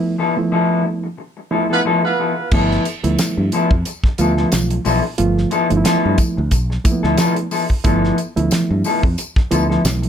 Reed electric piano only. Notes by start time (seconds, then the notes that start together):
Already playing: F3 A3 B3 E4
0.37 F3 A3 B3 E4
1.51 F3 A3 B3 E4
2.52 F3 A3 B3 E4
3.04 F3 A3 B3 E4
4.19 F3 A3 B3 F4
5.18 F3 A3 B3 F4
5.70 F3 A3 B3 D#4
5.77 E4
6.85 F3 A3 A#3 E4
6.92 B3
7.84 F3 A3 B3 E4
8.36 F3 A3 B3 E4
9.51 F3 A3 B3 E4